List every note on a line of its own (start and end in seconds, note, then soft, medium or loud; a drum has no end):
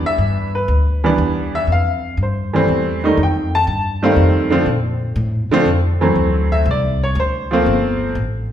0.00 0.46 E3 medium
0.00 0.46 G3 medium
0.00 0.47 B3 medium
0.00 0.47 D4 medium
0.00 muted upright bass stroke soft
0.06 0.51 E5 loud
0.18 0.67 G2 medium
0.55 1.15 B4 medium
0.68 1.17 D2 medium
1.04 1.66 E3 medium
1.04 1.66 G3 medium
1.04 1.66 B3 medium
1.04 1.67 D4 medium
1.18 1.67 E2 medium
1.55 1.69 E5 medium
1.67 2.16 F2 medium
1.72 2.17 F5 medium
2.17 2.66 G2 medium
2.23 3.00 C5 medium
2.53 2.99 E3 medium
2.53 3.00 G3 medium
2.53 3.00 A3 medium
2.53 3.00 C4 medium
2.68 3.16 E2 medium
3.04 3.17 D#3 medium
3.04 3.17 G3 medium
3.04 3.18 A3 medium
3.04 3.18 D#4 medium
3.17 3.66 F2 medium
3.23 3.54 G5 medium
3.55 4.00 A5 loud
3.67 4.16 G2 medium
4.03 4.49 D#3 medium
4.03 4.49 G3 medium
4.03 4.49 A3 medium
4.03 4.49 C4 medium
4.03 4.57 F5 medium
4.16 4.65 F2 medium
4.50 4.65 D3 medium
4.50 4.66 F3 medium
4.50 4.66 A3 medium
4.50 4.66 C4 medium
4.66 5.15 A#2 medium
5.16 5.48 A2 medium
5.49 5.66 D3 medium
5.49 5.66 F3 medium
5.49 5.66 A3 medium
5.49 muted upright bass stroke soft
5.54 5.67 C4 loud
5.65 6.15 F2 medium
6.01 6.64 E3 medium
6.01 6.64 F#3 medium
6.01 6.64 A3 medium
6.01 6.64 C4 medium
6.15 6.65 D2 medium
6.52 6.67 E5 medium
6.66 7.15 C2 loud
6.71 7.02 D5 medium
7.04 7.18 C#5 medium
7.15 7.64 D2 loud
7.20 8.14 C5 medium
7.51 8.13 F3 medium
7.51 8.14 A3 medium
7.51 8.14 A#3 medium
7.51 8.15 C4 medium
7.66 8.15 G1 medium
8.15 8.52 A1 medium